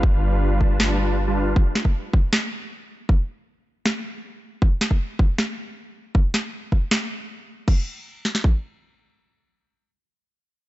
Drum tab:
CC |----------------|----------------|----------------|----------------|
SD |--------o-------|--o-----o-------|--------o-------|--o-----o-------|
BD |o-----o---------|o--o--o---------|o---------------|o--o--o---------|

CC |----------------|x---------------|----------------|
SD |--o-----o-------|------oo--------|----------------|
BD |o-----o---------|o-------o-------|----------------|